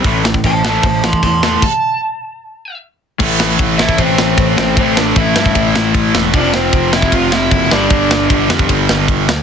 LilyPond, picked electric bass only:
\new Staff \with { instrumentName = "Picked electric bass" } { \clef bass \time 4/4 \key a \minor \tempo 4 = 153 a,,4 a,,4 a,,4 e,4 | r1 | a,,4 a,,4 a,,4 a,,8 a,,8 | a,,4 a,,8 g,8 a,,8 a,,8 a,,8 e,,8 |
f,,4 f,,4 f,,4 fis,,8 g,,8 | g,,4 g,,8 f,8 g,,8 g,,8 g,,8 d,8 | }